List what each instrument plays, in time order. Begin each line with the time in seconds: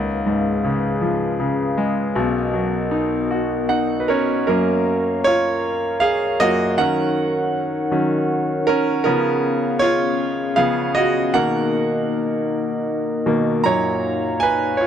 Already playing: grand piano C#2, glass harmonica C#4 G#4 B4 F5
0.26 grand piano G#2
0.64 grand piano C#3
1.01 grand piano F3
1.40 grand piano C#3
1.78 grand piano G#3
2.15 grand piano B1 B2, glass harmonica B3 F#4 A#4 D#5
2.54 grand piano F#3
2.91 grand piano D#4
3.31 grand piano F#4
3.69 grand piano D#4 F#5
4.00 grand piano B4
4.08 grand piano C#4 A#4 C#5
4.47 grand piano F#2 F#3 A#3 C#4 A#4, glass harmonica A#4 C#5 F5 A#5
5.24 grand piano F4 C#5
6.00 grand piano G#4 F5
6.40 grand piano F#2 A#3 F4 F#4 D#5
6.78 grand piano D#3 F#3 C#4 A#4 F#5, glass harmonica D#4 A#4 F#5
7.91 grand piano D#3 F#3 C#4
8.67 grand piano C#4 A#4
9.04 grand piano C#3 F3 B3 C#4 A#4, glass harmonica B3 C#4 G#4 F5
9.79 grand piano F4 C#5
10.56 grand piano C#3 F3 B3 G#4 F5
10.95 grand piano F#4 D#5
11.33 grand piano B2 D#3 A#3 A#4 F#5, glass harmonica A#3 D#4 A#4 D#5
13.26 grand piano B2 D#3 A#3
13.63 grand piano F#2 A#2 F#3 C#5 A#5, glass harmonica C#5 F5 A#5
14.40 grand piano B4 G#5
14.77 grand piano F4 C#5